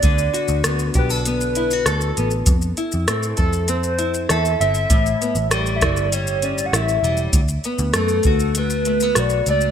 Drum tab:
HH |x-x-x-x-x-x-x-x-|x-x-x-x-x-x-x-x-|x-x-x-x-x-x-x-x-|x-x-x-x-x-x-x-x-|
SH |xxxxxxxxxxxxxxxx|xxxxxxxxxxxxxxxx|xxxxxxxxxxxxxxxx|xxxxxxxxxxxxxxxx|
SD |----r-------r---|----r-------r---|----r-r-----r---|----r-------r---|
BD |o-----o---------|o-----o---------|o-----o---------|o-----o---------|